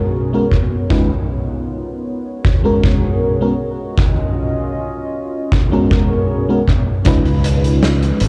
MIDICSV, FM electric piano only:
0, 0, Header, 1, 2, 480
1, 0, Start_track
1, 0, Tempo, 769231
1, 565, Time_signature, 4, 2, 24, 8
1, 5169, End_track
2, 0, Start_track
2, 0, Title_t, "FM electric piano"
2, 0, Program_c, 0, 5
2, 0, Note_on_c, 0, 56, 88
2, 0, Note_on_c, 0, 59, 82
2, 0, Note_on_c, 0, 61, 82
2, 0, Note_on_c, 0, 66, 83
2, 0, Note_on_c, 0, 70, 97
2, 177, Note_off_c, 0, 56, 0
2, 179, Note_off_c, 0, 59, 0
2, 180, Note_off_c, 0, 61, 0
2, 181, Note_off_c, 0, 66, 0
2, 182, Note_off_c, 0, 70, 0
2, 206, Note_on_c, 0, 56, 81
2, 208, Note_on_c, 0, 59, 71
2, 211, Note_on_c, 0, 61, 72
2, 212, Note_on_c, 0, 66, 70
2, 215, Note_on_c, 0, 70, 89
2, 279, Note_off_c, 0, 56, 0
2, 280, Note_off_c, 0, 59, 0
2, 281, Note_off_c, 0, 61, 0
2, 282, Note_off_c, 0, 66, 0
2, 283, Note_off_c, 0, 70, 0
2, 559, Note_on_c, 0, 56, 83
2, 562, Note_on_c, 0, 61, 75
2, 564, Note_on_c, 0, 63, 73
2, 567, Note_on_c, 0, 65, 77
2, 569, Note_on_c, 0, 71, 94
2, 686, Note_off_c, 0, 56, 0
2, 688, Note_off_c, 0, 61, 0
2, 689, Note_off_c, 0, 63, 0
2, 690, Note_off_c, 0, 65, 0
2, 691, Note_off_c, 0, 71, 0
2, 1646, Note_on_c, 0, 56, 84
2, 1648, Note_on_c, 0, 59, 83
2, 1651, Note_on_c, 0, 61, 80
2, 1653, Note_on_c, 0, 66, 81
2, 1655, Note_on_c, 0, 70, 96
2, 2098, Note_off_c, 0, 56, 0
2, 2099, Note_off_c, 0, 59, 0
2, 2101, Note_off_c, 0, 61, 0
2, 2102, Note_off_c, 0, 66, 0
2, 2103, Note_off_c, 0, 70, 0
2, 2125, Note_on_c, 0, 56, 77
2, 2127, Note_on_c, 0, 59, 75
2, 2130, Note_on_c, 0, 61, 76
2, 2132, Note_on_c, 0, 66, 74
2, 2135, Note_on_c, 0, 70, 88
2, 2199, Note_off_c, 0, 56, 0
2, 2200, Note_off_c, 0, 59, 0
2, 2201, Note_off_c, 0, 61, 0
2, 2202, Note_off_c, 0, 66, 0
2, 2203, Note_off_c, 0, 70, 0
2, 3567, Note_on_c, 0, 56, 92
2, 3569, Note_on_c, 0, 59, 83
2, 3571, Note_on_c, 0, 61, 82
2, 3575, Note_on_c, 0, 66, 84
2, 3577, Note_on_c, 0, 70, 99
2, 4019, Note_off_c, 0, 56, 0
2, 4020, Note_off_c, 0, 59, 0
2, 4021, Note_off_c, 0, 61, 0
2, 4023, Note_off_c, 0, 66, 0
2, 4024, Note_off_c, 0, 70, 0
2, 4046, Note_on_c, 0, 56, 80
2, 4049, Note_on_c, 0, 59, 74
2, 4051, Note_on_c, 0, 61, 72
2, 4053, Note_on_c, 0, 66, 75
2, 4056, Note_on_c, 0, 70, 91
2, 4119, Note_off_c, 0, 56, 0
2, 4121, Note_off_c, 0, 59, 0
2, 4122, Note_off_c, 0, 61, 0
2, 4123, Note_off_c, 0, 66, 0
2, 4124, Note_off_c, 0, 70, 0
2, 4396, Note_on_c, 0, 56, 98
2, 4401, Note_on_c, 0, 61, 91
2, 4406, Note_on_c, 0, 63, 94
2, 4410, Note_on_c, 0, 65, 91
2, 4414, Note_on_c, 0, 71, 110
2, 5121, Note_off_c, 0, 56, 0
2, 5123, Note_off_c, 0, 61, 0
2, 5125, Note_off_c, 0, 63, 0
2, 5128, Note_off_c, 0, 65, 0
2, 5130, Note_off_c, 0, 71, 0
2, 5169, End_track
0, 0, End_of_file